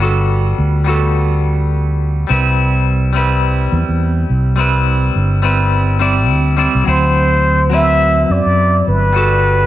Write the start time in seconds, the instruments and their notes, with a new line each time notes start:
Already playing: fretless electric bass G1
0.00 clean electric guitar G3 B3 F#4 A4
0.58 fretless electric bass D2
0.84 clean electric guitar G3 B3 F#4
0.89 clean electric guitar A4
2.27 fretless electric bass C2, clean electric guitar G3 C4 E4
2.32 clean electric guitar B4
3.13 clean electric guitar G3 C4 E4
3.18 clean electric guitar B4
3.72 fretless electric bass E2
3.88 fretless electric bass E2
4.29 fretless electric bass C2
4.56 clean electric guitar G3 C4 E4
4.61 clean electric guitar B4
5.15 fretless electric bass G1
5.42 clean electric guitar G3 C4 E4 B4
5.99 clean electric guitar G3 C4 E4 D5
6.30 fretless electric bass D2
6.57 clean electric guitar G3 C4 E4 D5
6.74 fretless electric bass C2
6.84 fretless electric bass D2, clean electric guitar F#3 C4 E4
6.88 muted trumpet C5, clean electric guitar C5
7.70 clean electric guitar F#3 C4 E4
7.74 clean electric guitar B4, muted trumpet E5
8.25 muted trumpet E5
8.29 fretless electric bass F#2, muted trumpet D5
8.45 fretless electric bass F#2
8.87 fretless electric bass G1, muted trumpet B4
9.13 clean electric guitar G3 B3 F#4
9.17 clean electric guitar A4